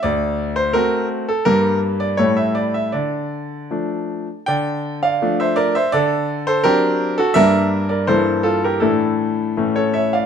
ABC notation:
X:1
M:2/4
L:1/16
Q:1/4=82
K:Dm
V:1 name="Grand piano"
d3 c B3 A | B3 d ^c e d e | d4 z4 | [dg]3 [df]2 [ce] [Bd] [ce] |
[Ad]3 [Ac] [GB]3 [^FA] | [Be]3 [Bd] [Ac]2 [FA] [GB] | [EA]4- [EA] [A^c] [ce] [df] |]
V:2 name="Grand piano"
D,,4 [A,C^F]4 | [G,,G,B,G]4 [A,,G,A,E]4 | D,4 [F,A,D]4 | D,4 [F,A,D]4 |
D,4 [^F,CD]4 | [G,,G,B,D]4 [G,,E,B,E]4 | [A,,E,A,D]4 [A,,E,A,^C]4 |]